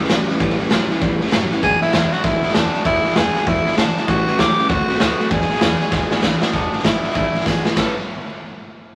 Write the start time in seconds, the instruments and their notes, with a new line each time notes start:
0.04 snare
0.08 upright bass A1, steel-string acoustic guitar A2 E3 G3 C#4 E4, clean electric guitar A2 F#3, snare, hi-hat pedal
0.28 clean electric guitar A2 E3, steel-string acoustic guitar G3 C#4 E4, muted upright bass stroke, snare
0.40 upright bass A1, steel-string acoustic guitar A2 E3 G3 C#4 E4, clean electric guitar A2 E3, kick, snare
0.50 snare
0.58 clean electric guitar A2 E3, steel-string acoustic guitar G3 C#4 E4, muted upright bass stroke, snare
0.70 upright bass A1, steel-string acoustic guitar A2 E3 G3 C#4 E4, clean electric guitar A2 F#3, snare, hi-hat pedal
0.89 clean electric guitar A2 E3, steel-string acoustic guitar G3 C#4 E4, muted upright bass stroke, snare
1.00 upright bass A1, clean electric guitar A2 E3, steel-string acoustic guitar E3 G3 C#4 E4, kick, snare
1.19 clean electric guitar A2 E3, steel-string acoustic guitar G3 C#4 E4, muted upright bass stroke, snare
1.26 snare
1.31 upright bass F#1, steel-string acoustic guitar A2 E3 G3 C#4 E4, clean electric guitar A2 F#3, snare, hi-hat pedal
1.50 clean electric guitar A2 E3, steel-string acoustic guitar G3 C#4 E4, muted upright bass stroke, snare
1.62 upright bass E1, steel-string acoustic guitar E2 B2 E3 G#3 D4 E4, clean electric guitar E2 B2, tenor saxophone G#4, kick, snare
1.81 clean electric guitar E2 B2, steel-string acoustic guitar E3 G#3 D4 E4, tenor saxophone E4, snare
1.88 snare
1.93 upright bass E1, steel-string acoustic guitar E2 B2 E3 G#3 D4 E4, clean electric guitar E2 C#3, snare, hi-hat pedal
2.12 clean electric guitar E2 B2, steel-string acoustic guitar E3 G#3 D4 E4, tenor saxophone F#4, snare
2.23 upright bass A1, clean electric guitar E2 B2, steel-string acoustic guitar E3 G#3 D4 E4, tenor saxophone E4, kick, snare
2.42 clean electric guitar E2 B2, steel-string acoustic guitar E3 G#3 D4 E4, muted upright bass stroke, snare
2.49 snare
2.54 upright bass E1, steel-string acoustic guitar E2 B2 E3 G#3 D4 E4, clean electric guitar E2 C#3, tenor saxophone D4, snare, hi-hat pedal
2.73 clean electric guitar E2 B2, steel-string acoustic guitar E3 G#3 D4 E4, muted upright bass stroke, snare
2.84 upright bass E1, steel-string acoustic guitar E2 B2 E3 G#3 D4 E4, clean electric guitar E2 B2, tenor saxophone E4, kick, snare
2.95 snare
3.03 clean electric guitar E2 B2, steel-string acoustic guitar E3 G#3 D4 E4, muted upright bass stroke, snare
3.10 snare
3.16 upright bass E1, clean electric guitar E2 C#3, steel-string acoustic guitar E2 B2 E3 G#3 D4 E4, tenor saxophone G#4, snare, hi-hat pedal
3.35 clean electric guitar E2 B2, steel-string acoustic guitar E3 G#3 D4 E4, muted upright bass stroke, snare
3.46 upright bass E1, clean electric guitar E2 B2, steel-string acoustic guitar E3 G#3 D4 E4, tenor saxophone E4, kick, snare
3.65 clean electric guitar E2 B2, steel-string acoustic guitar E3 G#3 D4 E4, muted upright bass stroke, snare
3.72 snare
3.77 upright bass G#1, steel-string acoustic guitar E2 B2 E3 G#3 D4 E4, clean electric guitar E2 C#3, tenor saxophone D4, snare, hi-hat pedal
3.96 clean electric guitar E2 B2, steel-string acoustic guitar E3 G#3 D4 E4, muted upright bass stroke, snare
4.08 upright bass A1, clean electric guitar A2 E3, steel-string acoustic guitar A2 E3 G3 C#4 E4, tenor saxophone F#4, kick, snare
4.27 clean electric guitar A2 E3, steel-string acoustic guitar G3 C#4 E4, snare
4.39 upright bass C#2, steel-string acoustic guitar A2 E3 G3 C#4 E4, clean electric guitar A2 F#3, tenor saxophone G4, snare, hi-hat pedal
4.57 clean electric guitar A2 E3, steel-string acoustic guitar G3 C#4 E4, muted upright bass stroke, snare
4.69 upright bass D2, steel-string acoustic guitar D3 A3 C4 F#4, clean electric guitar D3 A3, tenor saxophone F#4, kick, snare
4.88 clean electric guitar D3 A3, steel-string acoustic guitar A3 C4 F#4, muted upright bass stroke, snare
4.95 snare
5.00 upright bass D2, clean electric guitar D3 B3, steel-string acoustic guitar D3 A3 C4 F#4, tenor saxophone F#4, snare, hi-hat pedal
5.18 clean electric guitar D3 A3, steel-string acoustic guitar A3 C4 F#4, snare
5.30 upright bass E1, steel-string acoustic guitar E2 B2 E3 G#3 D4 E4, clean electric guitar E2 B2, tenor saxophone G#4, kick, snare
5.41 snare
5.49 clean electric guitar E2 B2, steel-string acoustic guitar E3 G#3 D4 E4, muted upright bass stroke, snare
5.56 snare
5.61 upright bass E1, steel-string acoustic guitar E2 B2 E3 G#3 D4 E4, clean electric guitar E2 C#3, snare, hi-hat pedal
5.79 clean electric guitar E2 B2, steel-string acoustic guitar E3 G#3 D4 E4, snare
5.91 upright bass E1, clean electric guitar E2 B2, steel-string acoustic guitar E3 G#3 D4 E4, kick, snare
6.10 clean electric guitar E2 B2, steel-string acoustic guitar E3 G#3 D4 E4, muted upright bass stroke, snare
6.21 upright bass B1, steel-string acoustic guitar E2 B2 E3 G#3 D4 E4, clean electric guitar E2 C#3, snare, hi-hat pedal
6.40 clean electric guitar E2 B2, steel-string acoustic guitar E3 G#3 D4 E4, muted upright bass stroke, snare
6.52 upright bass E1, clean electric guitar E2 B2, steel-string acoustic guitar E2 B2 E3 G#3 D4 E4, tenor saxophone D4, kick, snare
6.72 steel-string acoustic guitar E3 G#3 D4 E4, snare
6.79 steel-string acoustic guitar E3, snare
6.83 upright bass G#1, clean electric guitar E2 B2, steel-string acoustic guitar G#3 D4 E4, tenor saxophone E4, kick, snare, hi-hat pedal
7.02 clean electric guitar E2 B2, steel-string acoustic guitar E3 G#3 D4 E4, snare
7.09 snare
7.14 upright bass B1, steel-string acoustic guitar E2 B2 E3 G#3 D4 E4, clean electric guitar E2 C#3, tenor saxophone E4, kick, snare
7.33 steel-string acoustic guitar E3 G#3 D4 E4, muted upright bass stroke, snare
7.40 snare
7.45 upright bass G#1, clean electric guitar E2 B2, steel-string acoustic guitar E3 G#3 D4 E4, tenor saxophone G#4, kick, snare, hi-hat pedal
7.64 clean electric guitar E2 B2, steel-string acoustic guitar E3 G#3 D4 E4, muted upright bass stroke, snare
7.76 steel-string acoustic guitar A2 G3 B3 C#4 E4, clean electric guitar A2 E3 G3 C#4 E4 B4, tenor saxophone A4, kick, snare, ride bell